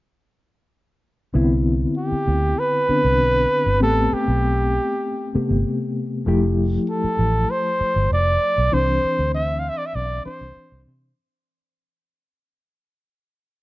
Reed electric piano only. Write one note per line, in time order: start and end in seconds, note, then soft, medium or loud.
1.34 2.85 D3 medium
1.34 2.85 B3 medium
1.34 2.86 C4 medium
1.34 2.86 E4 medium
2.88 3.81 D3 soft
2.88 3.80 B3 soft
2.88 3.79 C4 soft
2.88 3.81 D4 medium
3.80 5.32 A3 medium
3.80 5.32 B3 medium
3.80 5.31 C4 medium
3.80 5.32 G4 medium
5.34 6.27 C3 medium
5.34 6.26 A3 medium
5.34 6.27 B3 medium
5.34 6.27 G4 medium
6.26 8.68 F3 medium
6.26 8.68 A3 medium
6.26 8.69 E4 medium
6.26 8.69 G4 medium
8.72 10.22 E3 medium
8.72 10.22 C4 medium
8.72 10.23 D4 medium
8.72 10.23 C5 medium
10.25 11.17 E3 soft
10.25 11.17 C4 soft
10.25 11.17 D4 soft
10.25 11.18 C5 medium